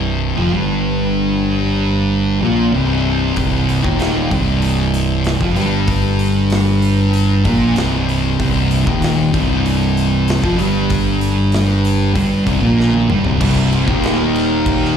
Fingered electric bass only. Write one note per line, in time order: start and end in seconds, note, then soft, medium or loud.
0.00 0.34 C1 medium
0.37 0.52 F1 medium
0.53 2.38 G1 medium
2.41 2.71 A#1 medium
2.73 3.32 C1 medium
3.37 3.81 C1 medium
3.84 4.28 D#1 medium
4.32 5.37 C1 medium
5.41 5.55 F1 medium
5.56 7.41 G1 medium
7.45 7.74 A#1 medium
7.77 8.36 C1 medium
8.40 8.83 C1 medium
8.86 9.30 D#1 loud
9.34 10.39 C1 loud
10.43 10.57 F1 loud
10.58 12.11 G1 medium
12.15 12.44 G1 loud
12.47 12.61 C1 medium
12.62 13.05 A#1 loud
13.09 13.23 G1 medium
13.25 13.39 C1 medium
13.40 13.84 C1 medium
13.87 14.97 D#1 loud